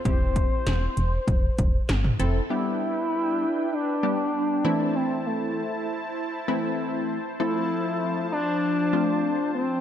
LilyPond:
<<
  \new Staff \with { instrumentName = "Analog synth pad" } { \time 4/4 \key g \mixolydian \tempo 4 = 98 << { r1 | <d' g''>2.~ <d' g''>8 <e' a''>8~ | <e' a''>1 | <f a''>1 | } \\ { r1 | b'2.~ b'8 c''8~ | c''1~ | c''1 | } >> }
  \new Staff \with { instrumentName = "Analog synth lead" } { \time 4/4 \key g \mixolydian c''2. r4 | e'2 d'2 | c'8 a4 r2 r8 | e'4. d'2 c'8 | }
  \new Staff \with { instrumentName = "Analog polysynth" } { \time 4/4 \key g \mixolydian <c' e' g'>4. r2 <c' e' a'>8 | <g b d' g'>4. r4 <g b d' g'>4 <e a c' e'>8~ | <e a c' e'>4 r4. <e a c' e'>4 r8 | <f a c' a'>4. r4 <f a c' f'>4 r8 | }
  \new Staff \with { instrumentName = "FM bass" } { \clef bass \time 4/4 \key g \mixolydian e,,4 e,,8 e,,8 e,,8 e,,8 g,,8 f,,8 | r1 | r1 | r1 | }
  \new DrumStaff \with { instrumentName = "Drums" } \drummode { \time 4/4 <hh bd>8 <hh bd>8 <hh sn>8 hh8 <hh bd>8 <hh bd>8 <hh sn>16 toml16 hh8 | r4 r4 r4 r4 | r4 r4 r4 r4 | r4 r4 r4 r4 | }
>>